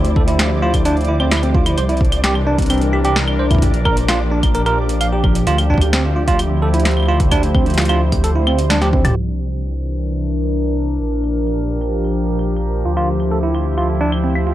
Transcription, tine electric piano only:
0.16 A4
0.28 E4
0.62 F4
0.85 D4
1.08 E4
1.20 C4
1.32 E4
1.43 C4
1.55 F4
1.66 E4
1.78 C5
1.89 E4
2.24 G4
2.47 D4
2.70 C4
2.93 G4
3.05 G4
3.39 C5
3.51 E4
3.85 A#4
4.09 F4
4.32 D4
4.55 A#4
4.66 A#4
5.01 F5
5.12 G4
5.47 F4
5.70 D4
5.93 C4
6.16 F4
6.28 F4
6.62 A4
6.74 E4
7.09 F4
7.32 D4
7.55 C4
7.78 F4
7.89 F4
8.24 A4
8.35 E4
8.47 C4
8.70 D4
8.82 G4
8.93 C4
9.05 G4
12.85 F4
12.97 F4
13.31 A4
13.43 E4
13.78 F4
14.01 D4
14.24 C4
14.47 F4

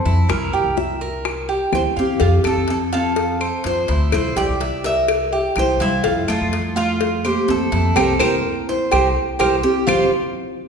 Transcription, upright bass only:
0.06 F2
0.29 C2
0.53 C2
0.64 C2
1.72 D2
1.97 E2
2.21 F2
2.45 F2
2.57 F2
3.65 F2
3.89 D2
4.13 C2
4.36 C2
4.49 C2
5.56 C2
5.81 C2
6.05 F2
6.29 F2
6.41 F2
7.49 F2
7.72 F2
7.97 C2
8.21 C2
8.92 C2
9.40 C2
9.88 F1

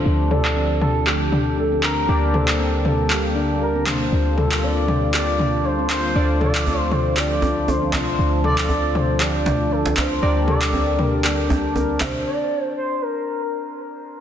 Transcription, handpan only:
0.05 D4
0.31 A4
0.56 C4
0.81 D4
1.07 G4
1.32 D4
1.58 D4
1.72 C4
1.83 D4
2.08 D4
2.34 A4
2.60 C4
2.85 D4
3.10 G4
3.36 D4
3.61 D4
3.75 C4
3.87 D4
4.12 D4
4.38 A4
4.63 C4
4.88 D4
5.14 G4
5.39 D4
5.64 D4
5.79 C4
5.90 D4
6.15 D4
6.40 A4
6.66 C4
6.92 D4
7.17 G4
7.42 D4
7.68 D4
7.82 C4
7.93 D4
8.19 D4
8.44 A4
8.70 C4
8.95 D4
9.21 G4
9.46 D4
9.71 D4
9.85 C4
9.97 D4
10.22 D4
10.48 A4
10.73 C4
10.99 D4
11.24 G4
11.49 D4
11.75 D4
11.89 C4
12.00 D4

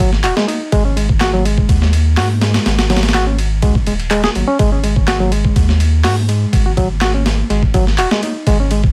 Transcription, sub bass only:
0.00 G#1
0.24 D#1
0.72 G#1
1.69 D#2
2.17 G#2
2.66 G#1
3.62 C#2
3.87 D#1
4.35 G#1
4.59 G#1
5.56 D#2
6.04 G#2
6.53 G#1
7.50 G#1
7.74 G#1
7.97 D#1
8.47 G#1

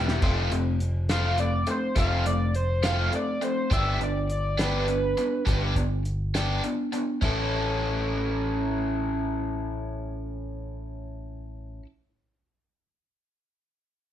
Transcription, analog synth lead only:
1.11 F5
1.40 D5
1.70 C5
1.99 F5
2.27 D5
2.55 C5
2.85 F5
3.15 D5
3.44 C5
3.73 E5
4.03 D5
4.31 D5
4.61 B4

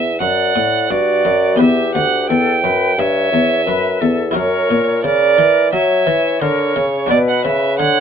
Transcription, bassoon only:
Already playing: E2
0.21 F#2
0.56 A2
0.90 G2
1.25 F#2
1.60 E2
1.95 D2
2.29 E2
2.63 F#2
2.98 G2
3.32 E2
3.66 F#2
4.01 E2
4.36 F#2
4.70 A#2
5.04 C#3
5.38 E3
5.73 F#3
6.07 E3
6.41 D3
6.76 C#3
7.10 B2
7.45 C#3
7.79 D3

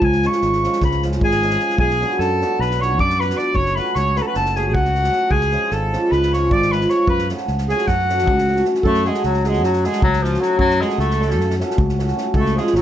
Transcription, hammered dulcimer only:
Already playing: F3 G#3
0.23 F3 G#3 C#4 F4
0.63 F3 G#3 C#4 F4
1.03 F3 G#3 C#4 F4
1.43 F3 G#3 C#4 F4
1.60 F3 G#3 C#4 F4
2.02 F#3 B3 D4 F#4
2.41 F#3 B3 D4 F#4
2.79 F#3 B3 D4 F#4
3.19 F#3 B3 D4 F#4
3.36 F#3 B3 D4 F#4
3.75 F#3 A3 C#4 F#4
4.16 F#3 A3 C#4 F#4
4.56 F#3 A3 C#4 F#4
4.94 F#3 A3 C#4 F#4
5.12 F#3 A3 C#4 F#4
5.52 F3 G#3 C#4 F4
5.93 F3 G#3 C#4 F4
6.33 F3 G#3 C#4 F4
6.72 F3 G#3 C#4 F4
6.90 F3 G#3 C#4 F4
7.30 F#3 A3 C#4 F#4
7.70 F#3 A3 C#4 F#4
8.09 F#3 A3 C#4 F#4
8.47 F#3 A3 C#4 F#4
8.66 F#3 A3 C#4 F#4
9.06 F#3 A3 C#4 F#4
9.45 F#3 A3 C#4 F#4
9.85 F#3 A3 C#4 F#4
10.23 F#3 A3 C#4 F#4
10.40 F#3 A3 C#4 F#4
10.79 F#3 A3 C#4 F#4
11.20 F#3 A3 C#4 F#4
11.60 F#3 A3 C#4 F#4
11.99 F#3 A3 C#4 F#4
12.16 F#3 A3 C#4 F#4
12.55 F3 G#3 C#4 F4

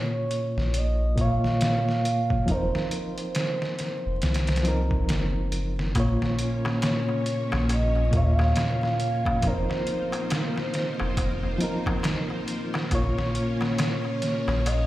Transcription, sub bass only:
0.57 A#1
2.48 F1
4.06 F1
4.23 C2
5.11 F#1
5.96 A#1
7.53 A#1
8.14 D#2
9.43 F1
11.00 F1
12.91 A#1
14.47 A#1

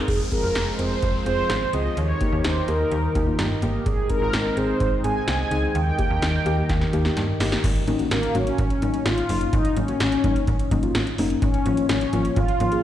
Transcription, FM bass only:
0.08 F1
0.44 F1
0.55 F1
0.79 F1
1.03 F1
1.26 F1
1.50 G#1
1.74 C#2
1.97 D#2
2.33 D#2
2.44 D#2
2.68 D#2
2.92 D#2
3.15 D#2
3.39 G2
3.62 G1
3.86 G#1
4.21 G#1
4.33 G#1
4.57 G#1
4.81 G#1
5.04 G#1
5.28 C2
5.51 C#2
5.75 D#2
6.10 D#2
6.22 D#2
6.46 D#2
6.70 D#2
6.93 D#2
7.17 G2
7.40 G1
7.64 G#1
7.88 G#1
8.11 G#1
8.35 G#1
8.59 G#1
8.82 G#1
9.06 G#1
9.29 F#1
9.53 G#1
9.77 G#1
10.00 G#1
10.24 G#1
10.48 G#1
10.71 G#1
10.95 G#1
11.19 F#1
11.42 G#1
11.66 G#1
11.89 G#1
12.13 G#1
12.37 G#1
12.60 G#1

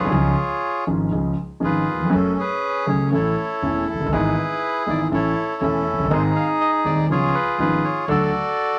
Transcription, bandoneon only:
Already playing: F4 G#4 C#5
1.63 F4 G#4 B4
2.14 C#4 A4
2.39 G#4 B4
2.89 C#5
3.13 E4 A4 C#5
3.89 A4
4.13 E4 G#4 B4
4.90 D5
5.13 E4 A4 C#5
5.62 C#4 E4 A4
6.12 D#4 G#4 C5
6.36 F5
6.61 D#5
6.85 D5
7.11 F4 G#4 C#5
7.35 B4
7.60 B4
7.84 C#5
8.10 F#4 A4 D5

